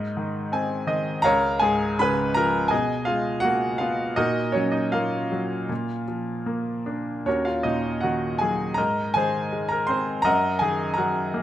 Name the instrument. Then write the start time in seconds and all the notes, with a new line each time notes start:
grand piano
Already playing: G#2 D#4 A#4 D#5
0.17 D#3
0.52 C4 G#5
0.87 D#3 D#5
1.22 C#2 A#4 C#5 F5 A#5
1.59 G#2 G#4 G#5
1.99 C#3 B4 B5
2.34 F3 A#4 A#5
2.68 B2 G#4 D#5 G#5
3.05 G#3 F4 F5
3.40 F#4 F#5
3.44 A#3
3.78 B3 F4 F5
4.16 A#2 D#4 F#4 A#4 D#5
4.52 F#3 C#4 C#5
4.72 D#4 D#5
4.92 A#3 F4 A#4 F5
5.32 F#3
5.69 A#2
6.08 F3
6.46 A#3
6.86 D4
7.26 D#2 C#4 F#4 A#4 C#5
7.45 F4 F5
7.63 A#2 D#4 D#5
8.01 D#3 F#4 F#5
8.39 F#3 G#4 G#5
8.74 G#2 A#4 D#5 A#5
9.14 D#3 G#4 C5 G#5
9.52 G#3
9.69 A#4 A#5
9.87 C4 C5 C6
10.22 F#2 A#4 D#5 F#5 A#5
10.59 D#3 G#4 G#5
10.94 A#4 A#5
10.98 F#3 F#5
11.34 A#3